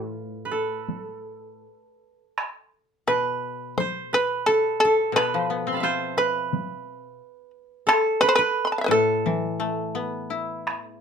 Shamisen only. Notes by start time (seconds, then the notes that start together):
Already playing: A4
3.08 B4
3.78 C5
4.14 B4
4.46 A4
4.80 A4
5.16 B4
5.67 A#4
5.79 A4
6.18 B4
7.89 A4
8.21 B4
8.29 C5
8.35 B4
8.65 B5 C6
8.72 A5
8.78 E5 F5
8.84 B4 C5
8.91 A4